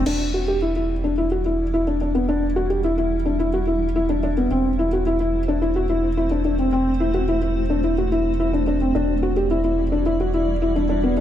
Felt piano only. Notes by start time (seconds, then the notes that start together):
0.06 D4
0.34 F#4
0.48 G4
0.62 E4
0.76 E4
1.04 D4
1.18 E4
1.31 F#4
1.46 E4
1.74 E4
1.87 D4
2.01 D4
2.15 B3
2.29 D4
2.56 F#4
2.70 G4
2.84 E4
2.98 E4
3.25 D4
3.39 E4
3.53 F#4
3.67 E4
3.96 E4
4.09 D4
4.23 D4
4.37 B3
4.51 C4
4.79 E4
4.93 F#4
5.07 E4
5.20 E4
5.48 D4
5.62 E4
5.76 F#4
5.89 E4
6.17 E4
6.31 D4
6.45 D4
6.59 C4
6.72 C4
7.00 E4
7.14 F#4
7.28 E4
7.42 E4
7.70 D4
7.84 E4
7.98 F#4
8.12 E4
8.40 E4
8.53 D4
8.67 D4
8.81 C4
8.95 D4
9.23 F#4
9.36 G4
9.51 E4
9.64 E4
9.92 D4
10.06 E4
10.20 F#4
10.34 E4
10.62 E4
10.76 D4
10.89 D4
11.04 B3
11.17 D4